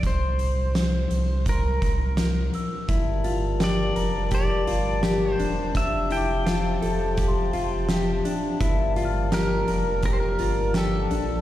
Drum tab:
HH |xxxxxxxx|xxxxxxxx|xxxxxxxx|xxxxxxxx|
SD |--o---o-|--o---o-|--o---o-|--o---o-|
BD |o---oo--|o---o---|o---o---|o---o---|